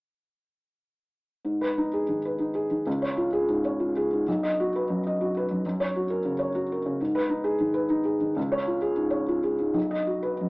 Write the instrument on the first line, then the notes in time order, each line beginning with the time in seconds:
felt piano
1.45 G#2
1.61 B4
1.78 D#4
1.93 G#4
2.08 D#3
2.25 B4
2.39 D#4
2.55 G#4
2.71 D#3
2.87 C#2
3.02 C#5
3.17 F4
3.33 G#4
3.49 G#2
3.65 C#5
3.80 F4
3.96 G#4
4.13 G#2
4.28 B1
4.43 D#5
4.60 F#4
4.76 B4
4.90 F#2
5.07 D#5
5.21 F#4
5.37 B4
5.51 F#2
5.66 F#2
5.80 C#5
5.96 F#4
6.10 A#4
6.25 C#3
6.39 C#5
6.55 F#4
6.72 A#4
6.86 C#3
7.01 G#2
7.15 B4
7.29 D#4
7.44 G#4
7.60 D#3
7.74 B4
7.90 D#4
8.05 G#4
8.21 D#3
8.36 C#2
8.52 C#5
8.67 F4
8.82 G#4
8.97 G#2
9.10 C#5
9.28 F4
9.43 G#4
9.60 G#2
9.74 B1
9.91 D#5
10.07 F#4
10.22 B4
10.41 F#2